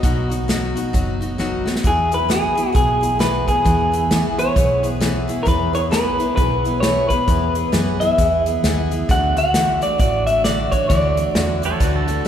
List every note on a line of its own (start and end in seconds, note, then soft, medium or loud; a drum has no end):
0.00 0.73 B1 medium
0.00 0.31 B2 medium
0.00 0.31 F#3 medium
0.00 0.31 B3 medium
0.00 1.36 D#5 medium
0.00 kick loud
0.00 closed hi-hat medium
0.04 0.30 D#4 medium
0.04 0.29 F#4 medium
0.30 0.48 B3 soft
0.30 0.49 D#4 soft
0.30 0.48 F#4 medium
0.30 closed hi-hat medium
0.48 0.76 B2 medium
0.48 0.76 F#3 medium
0.48 0.77 B3 medium
0.48 0.76 D#4 medium
0.48 0.74 F#4 medium
0.48 snare loud
0.48 closed hi-hat medium
0.76 0.93 B3 soft
0.76 0.94 D#4 medium
0.76 0.94 F#4 medium
0.76 closed hi-hat medium
0.93 1.63 F#1 medium
0.93 1.21 F#3 medium
0.93 1.22 B3 medium
0.93 1.21 D#4 medium
0.93 1.19 F#4 medium
0.93 kick loud
0.93 closed hi-hat medium
1.21 1.38 B3 soft
1.21 1.39 D#4 soft
1.21 1.39 F#4 soft
1.21 closed hi-hat medium
1.38 1.66 B2 medium
1.38 1.67 F#3 medium
1.38 1.67 B3 medium
1.38 1.66 D#4 medium
1.38 1.64 F#4 medium
1.38 snare soft
1.66 1.83 B3 soft
1.66 1.84 D#4 soft
1.66 1.84 F#4 medium
1.66 snare medium
1.76 snare medium
1.83 2.54 E2 medium
1.83 2.12 E3 medium
1.83 2.12 B3 medium
1.83 2.12 E4 medium
1.83 2.10 G#4 medium
1.83 2.14 G#4 medium
1.83 kick loud
1.83 closed hi-hat medium
2.11 2.28 B3 soft
2.11 2.28 E4 soft
2.11 2.29 G#4 medium
2.11 2.31 B4 medium
2.11 closed hi-hat medium
2.28 2.57 E3 medium
2.28 2.57 B3 medium
2.28 2.56 E4 medium
2.28 2.54 G#4 medium
2.28 2.75 G#4 medium
2.28 snare loud
2.28 closed hi-hat medium
2.55 2.72 B3 soft
2.55 2.73 E4 soft
2.55 2.74 G#4 medium
2.55 closed hi-hat medium
2.73 3.45 B1 medium
2.73 3.02 E3 medium
2.73 3.02 B3 medium
2.73 3.01 E4 medium
2.73 3.00 G#4 medium
2.73 3.20 G#4 medium
2.73 kick loud
2.73 closed hi-hat medium
3.01 3.19 B3 soft
3.01 3.19 E4 soft
3.01 3.20 G#4 soft
3.01 closed hi-hat medium
3.19 3.47 E3 medium
3.19 3.48 B3 medium
3.19 3.47 E4 medium
3.19 3.46 G#4 medium
3.19 3.46 B4 medium
3.19 snare loud
3.19 closed hi-hat medium
3.47 3.64 B3 soft
3.47 3.65 E4 soft
3.47 3.65 G#4 medium
3.47 4.35 G#4 medium
3.47 kick medium
3.47 closed hi-hat medium
3.65 4.35 E2 medium
3.65 3.93 E3 medium
3.65 3.93 B3 medium
3.65 3.92 E4 medium
3.65 3.91 G#4 medium
3.65 kick loud
3.65 closed hi-hat medium
3.92 4.10 B3 soft
3.92 4.11 E4 soft
3.92 4.11 G#4 medium
3.92 closed hi-hat medium
4.11 4.39 E3 medium
4.11 4.39 B3 medium
4.11 4.38 E4 medium
4.11 4.37 G#4 medium
4.11 snare loud
4.11 closed hi-hat medium
4.38 4.56 B3 soft
4.38 4.56 E4 soft
4.38 4.56 G#4 soft
4.38 4.81 C#5 medium
4.38 closed hi-hat medium
4.55 5.26 B1 medium
4.55 4.84 E3 medium
4.55 4.84 B3 medium
4.55 4.83 E4 medium
4.55 4.82 G#4 medium
4.55 kick loud
4.55 closed hi-hat medium
4.83 5.00 B3 soft
4.83 5.01 E4 soft
4.83 5.01 G#4 medium
4.83 closed hi-hat medium
5.00 5.29 E3 medium
5.00 5.29 B3 medium
5.00 5.28 E4 medium
5.00 5.26 G#4 medium
5.00 snare medium
5.00 closed hi-hat medium
5.28 5.45 B3 soft
5.28 5.45 E4 medium
5.28 5.46 G#4 medium
5.28 closed hi-hat medium
5.43 6.16 E2 medium
5.43 5.74 E3 medium
5.43 5.74 B3 medium
5.43 5.73 E4 medium
5.43 5.47 A#4 medium
5.43 kick loud
5.43 closed hi-hat medium
5.47 5.72 G#4 medium
5.47 5.73 B4 medium
5.73 5.91 B3 soft
5.73 5.92 E4 soft
5.73 5.92 G#4 medium
5.73 5.80 C#5 medium
5.73 closed hi-hat medium
5.91 6.19 E3 medium
5.91 6.20 B3 medium
5.91 6.19 E4 medium
5.91 6.17 G#4 medium
5.91 6.35 B4 medium
5.91 snare loud
5.91 closed hi-hat medium
6.18 6.36 B3 soft
6.18 6.37 E4 soft
6.18 6.37 G#4 medium
6.18 closed hi-hat medium
6.36 7.07 B1 medium
6.36 6.65 E3 medium
6.36 6.65 B3 medium
6.36 6.65 E4 medium
6.36 6.63 G#4 medium
6.36 6.79 B4 medium
6.36 kick loud
6.36 closed hi-hat medium
6.64 6.82 B3 soft
6.64 6.82 E4 soft
6.64 6.83 G#4 soft
6.64 closed hi-hat medium
6.80 7.10 E3 medium
6.80 7.10 B3 medium
6.80 7.10 E4 medium
6.80 7.09 G#4 medium
6.80 7.08 C#5 medium
6.80 snare loud
6.80 closed hi-hat medium
7.09 7.28 B3 soft
7.09 7.28 E4 soft
7.09 7.28 G#4 medium
7.09 8.00 B4 medium
7.09 kick medium
7.09 closed hi-hat medium
7.28 7.63 E2 medium
7.28 7.55 E3 medium
7.28 7.56 B3 medium
7.28 7.55 E4 medium
7.28 7.54 G#4 medium
7.28 kick loud
7.28 closed hi-hat medium
7.55 7.72 B3 soft
7.55 7.73 E4 soft
7.55 7.73 G#4 soft
7.55 closed hi-hat medium
7.72 8.12 F#2 medium
7.72 8.00 E3 medium
7.72 8.01 B3 medium
7.72 8.01 E4 medium
7.72 8.00 G#4 medium
7.72 snare loud
7.72 closed hi-hat medium
8.00 8.18 B3 soft
8.00 8.19 E4 soft
8.00 8.19 G#4 medium
8.00 8.43 E5 medium
8.00 closed hi-hat medium
8.18 8.57 E2 medium
8.18 8.46 E3 medium
8.18 8.46 B3 medium
8.18 8.46 E4 medium
8.18 8.45 G#4 medium
8.18 kick loud
8.18 closed hi-hat medium
8.46 8.63 B3 soft
8.46 8.64 E4 soft
8.46 8.64 G#4 medium
8.46 closed hi-hat medium
8.63 9.02 D#2 medium
8.63 8.92 E3 medium
8.63 8.92 B3 medium
8.63 8.92 E4 medium
8.63 8.90 G#4 loud
8.63 snare loud
8.63 closed hi-hat medium
8.91 9.09 B3 soft
8.91 9.10 E4 soft
8.91 9.09 G#4 medium
8.91 closed hi-hat medium
9.09 9.79 D2 medium
9.09 9.37 D3 medium
9.09 9.37 E3 medium
9.09 9.37 A3 medium
9.09 9.37 D4 medium
9.09 9.35 F#4 medium
9.09 9.37 F#5 loud
9.09 kick loud
9.09 closed hi-hat medium
9.37 9.54 A3 soft
9.37 9.54 D4 soft
9.37 9.54 F#4 medium
9.37 9.82 F#5 loud
9.37 closed hi-hat medium
9.54 9.82 D3 medium
9.54 9.82 E3 medium
9.54 9.82 A3 medium
9.54 9.81 D4 medium
9.54 9.80 F#4 medium
9.54 snare loud
9.54 closed hi-hat medium
9.81 9.98 A3 soft
9.81 9.99 D4 soft
9.81 9.99 F#4 medium
9.81 9.99 D5 medium
9.81 closed hi-hat medium
9.98 10.69 A1 medium
9.98 10.27 E3 medium
9.98 10.27 A3 medium
9.98 10.28 D4 medium
9.98 10.26 F#4 medium
9.98 10.26 D5 medium
9.98 kick loud
9.98 closed hi-hat medium
10.27 10.45 A3 soft
10.27 10.45 D4 soft
10.27 10.45 F#4 soft
10.27 10.44 E5 medium
10.27 closed hi-hat medium
10.44 10.73 D3 medium
10.44 10.73 E3 medium
10.44 10.73 A3 medium
10.44 10.73 D4 medium
10.44 10.72 F#4 medium
10.44 10.71 D5 medium
10.44 snare medium
10.44 closed hi-hat medium
10.72 10.90 D4 soft
10.72 10.90 F#4 medium
10.72 10.89 C#5 medium
10.72 kick medium
10.72 closed hi-hat medium
10.76 10.89 A3 soft
10.89 11.25 D2 medium
10.89 11.17 D3 medium
10.89 11.18 E3 medium
10.89 11.18 A3 medium
10.89 11.18 D4 medium
10.89 11.16 F#4 medium
10.89 11.58 D5 medium
10.89 kick loud
10.89 closed hi-hat medium
11.17 11.35 A3 soft
11.17 11.36 D4 soft
11.17 11.35 F#4 soft
11.17 closed hi-hat medium
11.35 11.74 E2 medium
11.35 11.63 D3 medium
11.35 11.63 E3 medium
11.35 11.63 A3 medium
11.35 11.62 D4 medium
11.35 11.61 F#4 medium
11.35 snare loud
11.35 closed hi-hat medium
11.62 11.80 A3 soft
11.62 11.81 D4 medium
11.62 11.80 F#4 medium
11.62 11.80 A4 medium
11.62 11.80 C#5 medium
11.62 closed hi-hat medium
11.80 12.19 D2 medium
11.80 12.08 E3 medium
11.80 12.08 A3 medium
11.80 11.95 D4 medium
11.80 12.08 D4 medium
11.80 12.06 F#4 medium
11.80 11.95 B4 medium
11.80 kick loud
11.80 closed hi-hat medium
11.96 12.28 A4 medium
12.07 12.25 A3 soft
12.07 12.25 D4 medium
12.07 12.26 F#4 medium
12.07 closed hi-hat medium
12.25 12.28 D3 medium